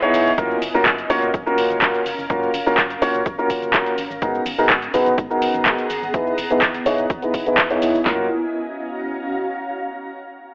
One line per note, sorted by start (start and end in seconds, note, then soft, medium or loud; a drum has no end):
0.00 0.38 B3 medium
0.00 0.29 B3 loud
0.00 0.29 D#4 medium
0.00 0.38 E4 medium
0.00 0.29 E4 medium
0.00 0.29 G#4 medium
0.00 0.29 C#5 loud
0.00 1.04 D#5 medium
0.00 1.22 G#5 medium
0.00 closed hi-hat soft
0.00 shaker soft
0.13 0.23 E1 medium
0.13 snare soft
0.13 closed hi-hat medium
0.13 open hi-hat medium
0.13 shaker medium
0.26 0.35 E1 loud
0.26 shaker soft
0.38 0.56 F#2 loud
0.38 0.55 A#3 medium
0.38 0.55 C#4 medium
0.38 4.85 C#4 medium
0.38 0.55 F4 medium
0.38 0.55 F#4 medium
0.38 0.55 A#4 medium
0.38 kick loud
0.38 closed hi-hat medium
0.38 shaker soft
0.51 shaker soft
0.62 0.71 F#1 loud
0.62 open hi-hat loud
0.62 shaker medium
0.67 3.98 F5 medium
0.74 0.83 F#1 medium
0.74 0.91 A#3 medium
0.74 0.91 C#4 medium
0.74 0.91 F4 medium
0.74 0.91 F#4 medium
0.74 0.91 A#4 medium
0.74 shaker soft
0.80 4.85 A#4 medium
0.86 1.04 F#2 medium
0.86 kick loud
0.86 clap loud
0.86 closed hi-hat medium
0.86 shaker soft
0.98 closed hi-hat soft
0.98 shaker soft
1.04 6.91 A#5 medium
1.10 1.19 F#1 loud
1.10 1.27 A#3 medium
1.10 1.27 C#4 medium
1.10 1.27 F4 medium
1.10 1.27 F#4 medium
1.10 1.27 C#5 loud
1.10 open hi-hat medium
1.10 shaker medium
1.22 1.31 F#1 medium
1.22 closed hi-hat medium
1.22 shaker soft
1.34 1.43 F#2 medium
1.34 kick loud
1.34 closed hi-hat medium
1.34 shaker soft
1.46 1.79 A#3 medium
1.46 1.79 C#4 medium
1.46 1.79 F4 medium
1.46 1.79 F#4 medium
1.46 1.79 A#4 medium
1.46 shaker soft
1.58 1.67 F#1 medium
1.58 open hi-hat loud
1.58 shaker medium
1.70 1.79 F#1 loud
1.70 shaker soft
1.82 1.91 F#2 medium
1.82 1.99 A#3 medium
1.82 1.99 C#4 medium
1.82 1.99 F4 medium
1.82 1.99 F#4 medium
1.82 1.99 A#4 medium
1.82 kick loud
1.82 clap loud
1.82 closed hi-hat medium
1.82 shaker soft
1.94 closed hi-hat soft
1.94 shaker soft
2.06 2.15 F#1 medium
2.06 open hi-hat medium
2.06 shaker medium
2.18 2.27 F#1 medium
2.18 shaker soft
2.30 2.48 F#2 loud
2.30 2.47 A#3 medium
2.30 2.47 C#4 medium
2.30 2.47 F4 medium
2.30 2.47 F#4 medium
2.30 2.47 A#4 medium
2.30 kick loud
2.30 closed hi-hat medium
2.30 shaker soft
2.43 shaker soft
2.54 2.63 F#1 loud
2.54 open hi-hat loud
2.54 shaker medium
2.66 2.75 F#1 medium
2.66 2.83 A#3 medium
2.66 2.83 C#4 medium
2.66 2.83 F4 medium
2.66 2.83 F#4 medium
2.66 2.83 A#4 medium
2.66 shaker soft
2.78 2.96 F#2 medium
2.78 kick loud
2.78 clap loud
2.78 closed hi-hat medium
2.78 shaker soft
2.90 closed hi-hat medium
2.90 shaker soft
3.02 3.11 F#1 loud
3.02 3.19 A#3 medium
3.02 3.19 C#4 medium
3.02 3.19 F4 medium
3.02 3.19 F#4 medium
3.02 3.19 C#5 loud
3.02 open hi-hat medium
3.02 shaker medium
3.14 3.23 F#1 medium
3.14 closed hi-hat medium
3.14 shaker soft
3.26 3.35 F#2 medium
3.26 kick loud
3.26 closed hi-hat medium
3.26 shaker soft
3.38 3.71 A#3 medium
3.38 3.71 C#4 medium
3.38 3.71 F4 medium
3.38 3.71 F#4 medium
3.38 3.71 A#4 medium
3.38 shaker soft
3.50 3.59 F#1 medium
3.50 kick medium
3.50 open hi-hat loud
3.50 shaker medium
3.62 3.71 F#1 loud
3.62 closed hi-hat soft
3.62 shaker soft
3.74 3.83 F#2 medium
3.74 3.91 A#3 medium
3.74 3.91 C#4 medium
3.74 3.91 F4 medium
3.74 3.91 F#4 medium
3.74 3.91 A#4 medium
3.74 kick loud
3.74 clap loud
3.74 closed hi-hat medium
3.74 shaker soft
3.86 closed hi-hat soft
3.86 shaker soft
3.98 4.07 G#1 medium
3.98 8.06 B3 medium
3.98 open hi-hat medium
3.98 shaker medium
4.10 4.19 G#1 medium
4.10 shaker soft
4.22 4.40 G#2 loud
4.22 4.39 B3 medium
4.22 4.39 D#4 medium
4.22 4.39 F#4 medium
4.22 4.39 G#4 medium
4.22 4.39 A#4 medium
4.22 kick loud
4.22 closed hi-hat medium
4.22 shaker soft
4.35 shaker soft
4.46 4.55 G#1 loud
4.46 open hi-hat loud
4.46 shaker medium
4.58 4.67 G#1 medium
4.58 4.75 B3 medium
4.58 4.75 D#4 medium
4.58 4.75 F#4 medium
4.58 4.75 G#4 medium
4.58 4.75 A#4 medium
4.58 shaker soft
4.68 4.88 G#2 medium
4.68 6.73 G#4 medium
4.68 kick loud
4.68 clap loud
4.68 closed hi-hat medium
4.68 shaker soft
4.77 6.91 F#5 medium
4.82 closed hi-hat medium
4.82 shaker soft
4.94 5.03 G#1 loud
4.94 5.11 B3 medium
4.94 5.11 D#4 medium
4.94 5.11 F#4 medium
4.94 5.11 G#4 medium
4.94 5.11 B4 loud
4.94 open hi-hat medium
4.94 shaker medium
5.06 5.15 G#1 medium
5.06 closed hi-hat medium
5.06 shaker soft
5.18 5.27 G#2 medium
5.18 kick loud
5.18 closed hi-hat medium
5.18 shaker soft
5.30 5.63 B3 medium
5.30 5.63 D#4 medium
5.30 5.63 F#4 medium
5.30 5.63 G#4 medium
5.30 5.63 A#4 medium
5.30 shaker soft
5.42 5.51 G#1 medium
5.42 open hi-hat loud
5.42 shaker medium
5.54 5.63 G#1 loud
5.54 closed hi-hat soft
5.54 shaker soft
5.66 5.75 G#2 medium
5.66 5.83 B3 medium
5.66 5.83 D#4 medium
5.66 5.83 F#4 medium
5.66 5.83 G#4 medium
5.66 5.83 A#4 medium
5.66 kick loud
5.66 clap loud
5.66 closed hi-hat medium
5.66 shaker soft
5.78 closed hi-hat soft
5.78 shaker soft
5.90 5.99 G#1 medium
5.90 open hi-hat medium
5.90 shaker medium
6.02 6.11 G#1 medium
6.02 shaker soft
6.14 6.32 E2 loud
6.14 6.31 B3 medium
6.14 6.31 D#4 medium
6.14 6.31 E4 medium
6.14 6.31 G#4 medium
6.14 6.31 B4 loud
6.14 kick loud
6.14 closed hi-hat medium
6.14 shaker soft
6.24 8.06 E4 medium
6.24 shaker soft
6.38 6.47 E1 loud
6.38 open hi-hat loud
6.38 shaker medium
6.50 6.59 E1 medium
6.50 6.67 B3 medium
6.50 6.67 D#4 medium
6.50 6.67 E4 medium
6.50 6.67 G#4 medium
6.50 6.67 B4 medium
6.50 closed hi-hat soft
6.50 shaker soft
6.62 6.80 E2 medium
6.62 kick loud
6.62 clap loud
6.62 closed hi-hat medium
6.62 shaker soft
6.74 closed hi-hat medium
6.74 shaker soft
6.86 6.95 E1 loud
6.86 7.03 B3 medium
6.86 7.03 D#4 medium
6.86 7.03 E4 medium
6.86 7.03 G#4 medium
6.86 7.03 C#5 loud
6.86 open hi-hat medium
6.86 shaker medium
6.98 7.07 E1 medium
6.98 closed hi-hat medium
6.98 shaker soft
7.10 7.19 E2 medium
7.10 kick loud
7.10 closed hi-hat medium
7.10 shaker soft
7.22 7.44 B3 medium
7.22 7.44 D#4 medium
7.22 7.44 E4 medium
7.22 7.44 G#4 medium
7.22 7.44 B4 medium
7.22 closed hi-hat soft
7.22 shaker soft
7.34 7.43 E1 medium
7.34 kick medium
7.34 open hi-hat medium
7.34 shaker medium
7.46 7.55 E1 medium
7.46 7.63 B3 loud
7.46 7.63 D#4 medium
7.46 7.63 E4 medium
7.46 7.63 G#4 medium
7.46 7.63 B4 loud
7.46 closed hi-hat soft
7.46 shaker soft
7.58 7.76 E2 loud
7.58 kick loud
7.58 clap loud
7.58 closed hi-hat medium
7.58 shaker soft
7.70 7.97 B3 loud
7.70 7.97 D#4 medium
7.70 7.97 E4 medium
7.70 7.97 G#4 medium
7.70 7.97 C#5 loud
7.70 closed hi-hat soft
7.70 shaker soft
7.82 7.91 E1 medium
7.82 open hi-hat medium
7.82 shaker medium
7.94 8.03 E1 medium
7.94 shaker soft
8.06 8.28 F#2 loud
8.06 8.24 A#3 medium
8.06 9.94 C#4 medium
8.06 8.24 C#4 medium
8.06 8.24 F4 medium
8.06 8.24 F#4 medium
8.06 8.24 A#4 medium
8.06 kick loud
8.06 snare loud
8.06 clap medium
8.14 9.94 F#4 medium
8.21 9.94 F5 medium
8.28 9.94 A#5 medium